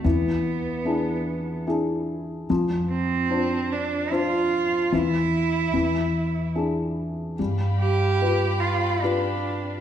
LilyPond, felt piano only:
\new Staff \with { instrumentName = "Felt piano" } { \time 3/4 \key e \phrygian \tempo 4 = 74 e4 <d' e' gis'>4 <d' e' gis'>4 | f4 <d' f' c''>4 <d' f' c''>4 | e4 e4 <d' e' gis'>4 | g4 <f' g' b'>4 <f' g' b'>4 | }